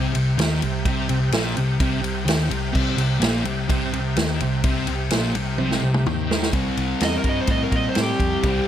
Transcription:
Already playing: C2 C3 G4 C5 E5 G5
0.14 C2 C3, ride
0.38 D#2 D#3, snare, ride
0.62 C2 C3, ride
0.85 C2 C3, kick, ride
1.09 C2 C3, ride
1.32 A#1 A#2, snare, ride
1.57 C2 C3, ride
1.80 C2 C3, kick, ride
2.02 C2 C3, ride
2.26 D#2 D#3, snare, ride
2.50 C2 C3, ride
2.73 C2 C3 G4 C5 E5 G5, kick, crash
2.97 C2 C3, ride
3.19 A#1 A#2, snare, ride
3.44 C2 C3, ride
3.69 C2 C3, kick, ride
3.94 C2 C3, ride
4.17 D#2 D#3, snare, ride
4.40 C2 C3, ride
4.64 C2 C3, kick, ride
4.87 C2 C3, ride
5.11 A#1 A#2, snare, ride
5.35 C2 C3, ride
5.58 C2 C3, high tom
5.71 snare
5.81 C2 C3
5.94 mid tom
6.06 D#2 D#3, mid tom
6.31 snare
6.43 snare
6.53 C2 C3 G3 C4, kick, ride
6.77 C2, ride
7.01 E2 D#5, snare, ride
7.18 A#4
7.24 G2, kick, ride
7.29 D#5
7.41 C5
7.47 A2 D#5, kick, ride
7.63 A#4
7.71 A#2, kick, ride
7.76 D#5
7.89 C5
7.95 A2, snare, ride
8.01 G4
8.19 F2, kick, ride
8.43 C2 C3 G3, kick, ride
8.48 C4

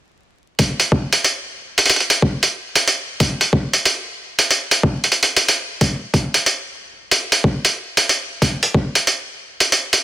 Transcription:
0.59 kick, closed hi-hat
0.80 closed hi-hat
0.92 kick
1.13 closed hi-hat
1.24 closed hi-hat
1.78 closed hi-hat
1.86 closed hi-hat
1.90 closed hi-hat
1.96 closed hi-hat
2.00 closed hi-hat
2.10 closed hi-hat
2.22 kick
2.43 closed hi-hat
2.75 closed hi-hat
2.88 closed hi-hat
3.20 kick, closed hi-hat
3.41 closed hi-hat
3.53 kick
3.74 closed hi-hat
3.85 closed hi-hat
4.39 closed hi-hat
4.51 closed hi-hat
4.71 closed hi-hat
4.83 kick
5.04 closed hi-hat
5.12 closed hi-hat
5.23 closed hi-hat
5.37 closed hi-hat
5.49 closed hi-hat
5.81 kick, closed hi-hat
6.14 kick, closed hi-hat
6.34 closed hi-hat
6.46 closed hi-hat
7.11 closed hi-hat
7.32 closed hi-hat
7.44 kick
7.65 closed hi-hat
7.97 closed hi-hat
8.09 closed hi-hat
8.42 kick, closed hi-hat
8.63 closed hi-hat
8.74 kick
8.95 closed hi-hat
9.07 closed hi-hat
9.60 closed hi-hat
9.72 closed hi-hat
9.93 closed hi-hat

